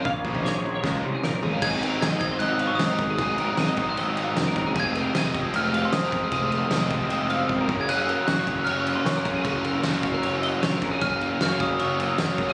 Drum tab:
CC |----------------|x-x-x-x-x-x-x-x-|x-x-x-x-x-x-x-x-|x-x-x-x-x-x-x-x-|
SD |----o---o---o---|----o-------o---|----o-------o---|----o-------o---|
FT |o--o----------o-|----------------|----------------|----------------|
BD |o-o-----o-------|o-----o-------o-|o-----o-------o-|o-----o-------o-|

CC |x-x-x-x-x-x-----|x-x-x-x-x-x-x-x-|x-x-x-x-x-x-x-x-|x-x-x-x-x-x-x-x-|
SD |----o-----------|----o-------o---|----o-------o---|----o-------o---|
FT |----------------|----------------|----------------|----------------|
BD |o-----o-----o-o-|------o-------o-|o-----o-------o-|o-----o-------o-|